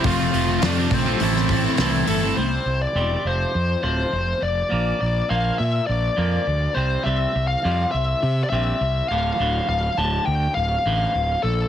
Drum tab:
HH |o-o-o-o-o-o-o-o-|----------------|----------------|----------------|
SD |----o----o--o---|----------------|----------------|----------------|
BD |o-----o---o-----|----------------|----------------|----------------|

HH |----------------|
SD |----------------|
BD |----------------|